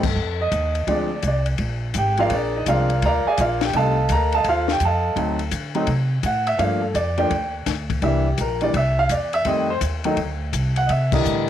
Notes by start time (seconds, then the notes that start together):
Already playing: G2
0.03 A4, kick, crash
0.16 F2
0.41 D#5
0.52 D#2, kick, hi-hat pedal, ride
0.75 ride
0.87 D2 F3 G#3 C4 D4, kick, ride
0.91 D5
1.22 C2, kick, hi-hat pedal, ride
1.28 D5
1.46 ride
1.58 A#1, kick, ride
1.94 G#1 G5, kick, hi-hat pedal, ride
1.98 G4
2.17 F3 G#3 C4 F4 A#4 D5 F5, ride
2.29 A#1 D4 C#5, kick, ride
2.33 G#4 A#4 D5
2.56 D#4 D#5
2.66 C2 F3 G#3 C4 D4 F4 A#4 D5 F5, kick, hi-hat pedal, ride
2.90 ride
3.02 D2 A#4 D5 A#5, kick, ride
3.06 F5
3.25 G#4 D5 F5 G#5, muted upright bass stroke
3.37 A#1 F4 A#4 D5 F5, kick, hi-hat pedal, ride
3.61 G4 G5, snare, ride
3.73 C2 G3 A3 C4 D#4 A4 D#5 F5 A5, kick, ride
4.09 D2 A#5, kick, hi-hat pedal, ride
4.13 A#4
4.32 A4 D#5 F5 A5, ride
4.44 D#2 C5, kick, ride
4.49 F4 A4 F5
4.68 G4 G5, snare
4.80 F2, kick, hi-hat pedal, ride
4.85 A4 D#5 F5 A5
5.16 D2 F#3 A3 C4 D#4, kick, ride
5.39 ride
5.51 D3, kick, hi-hat pedal, ride
5.75 F#3 A3 C4 D#4, ride
5.87 C3, kick, ride
6.23 A2 F#5, kick, hi-hat pedal, ride
6.47 E5, ride
6.58 G2 F3 A3 A#3 D4 F5, kick, ride
6.81 A4
6.94 F2 D5, kick, hi-hat pedal, ride
7.18 F3 A3 A#3 D4 G5, ride
7.30 D#2, kick, ride
7.66 D2, kick, snare, hi-hat pedal, ride
7.90 kick, ride
8.02 C2 E3 G3 A#3 D4 E5, kick, ride
8.27 G4
8.38 A#1 A#4, kick, hi-hat pedal, ride
8.61 E3 G3 A#3 D4 D5, ride
8.74 C2 E5, kick, ride
8.99 F5
9.09 E2 D5, kick, hi-hat pedal, ride
9.33 E5, ride
9.45 F2 D#3 G3 A3 C4 D#5, kick, ride
9.70 C5
9.81 D#2, kick, hi-hat pedal, ride
10.04 D#3 F#3 A3 D#4, ride
10.17 D2, kick, ride
10.53 C2, kick, hi-hat pedal, ride
10.76 F#5, ride
10.86 C3 D#5, kick, ride
10.90 E5
11.12 D3 E3 G3 A#4 D#5, kick, crash
11.25 A2, hi-hat pedal